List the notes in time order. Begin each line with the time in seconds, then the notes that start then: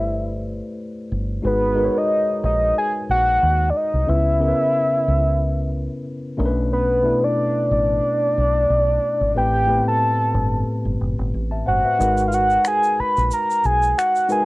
Already playing: G1 A3 E4 G4 B4 C5 D5 E5
1.12 G1
1.42 G#1 G#3 D#4 F#4 G#4 B4
1.47 B4
1.75 G#3 D#4 F#4 A#4 B4
1.84 C#5
1.98 D#5
2.44 A#1 D#5
2.78 G#5
3.09 A#1 F#5
3.43 D#2
3.70 D5
3.76 D#5
3.94 C2
4.07 C#2 C#3 B3 C#4 E4 B4 E5
4.39 C#3 B3 C#4 E4 A#4
4.48 B4
5.08 C#2
6.37 B1 B2 A3 C#4 D4 A#4
6.46 B4
6.73 B4
7.03 B2 A3 B3 D4 E4
7.24 D5
7.71 A1 D5
8.38 B1
8.70 B1
9.21 G#1
9.35 A1 A2 A3 C4 G4 B4 G5
9.67 A2 A3 B3 G4 B4
9.75 C4
9.88 A5
10.35 G1
10.85 G1
11.01 F#1
11.19 G1
11.34 A1
11.51 E5 A5
11.66 G1 C5 F#5
11.84 B4 E5
11.99 G#1 G#3 D#4 F#4 A#4 B4, shaker
12.17 shaker
12.28 F5
12.32 F#5, shaker
12.50 shaker
12.65 G#5, finger snap, shaker
12.83 shaker
13.00 B5, muted fingered electric bass stroke
13.17 A#1, shaker
13.31 A#5, shaker
13.50 shaker
13.64 B1 G#5, shaker
13.82 shaker
13.98 F#5, finger snap, shaker
14.15 shaker
14.29 G#3 D#4 F#4 A#4 B4 G#5, shaker